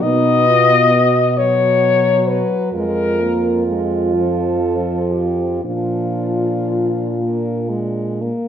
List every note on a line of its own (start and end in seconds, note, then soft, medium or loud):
0.01 2.42 B2 medium
0.01 1.09 B3 medium
0.01 0.49 D#4 medium
0.01 1.39 D#5 loud
0.47 0.95 F4 medium
0.93 1.38 F#4 medium
1.37 2.70 F#3 medium
1.37 2.76 F#4 medium
1.37 2.30 C#5 loud
2.28 2.72 B4 medium
2.73 5.60 F2 medium
2.73 3.21 G#3 medium
2.73 5.64 F4 medium
2.73 3.81 A#4 loud
3.20 3.66 A#3 medium
3.67 4.16 G#3 medium
4.13 5.65 F3 medium
4.13 5.13 A4 medium
5.12 5.64 G4 medium
5.64 8.31 A#2 medium
5.64 7.05 F3 medium
5.64 8.31 D4 medium
5.64 8.15 F4 medium
7.18 7.70 A#3 medium
7.69 8.23 G#3 medium
8.21 8.48 A#3 medium